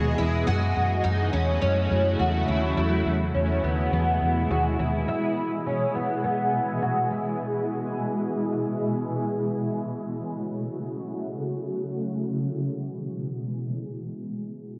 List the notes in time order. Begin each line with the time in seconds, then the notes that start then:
Already playing: D#2 B2 E3 G#3 B3 E4 F#4 G#4 D#5
0.15 E2 E4 G#4
0.21 B3
0.45 F#2 C#3 F#3 A3 E4 F#4
0.76 F#2
1.04 F#2 D#4
1.33 E2 C#4
1.62 F#2 C#4
1.91 F#2
2.19 E2 F#4
2.48 D#2 E4
2.77 E2 B2 E3 G#3 E4 G#4
3.06 E2
3.35 E2 C#4
3.64 D#2 B3
3.92 E2 B3
4.22 E2
4.51 D#2 F#4
4.79 D#2 E4
5.07 B2 E3 G#3 E4
5.66 C#4
5.95 B3
6.24 B3
6.82 F#4
7.11 E4
9.70 C#3 F#3 A3 F#4
12.00 B2 E3 G#3 G#4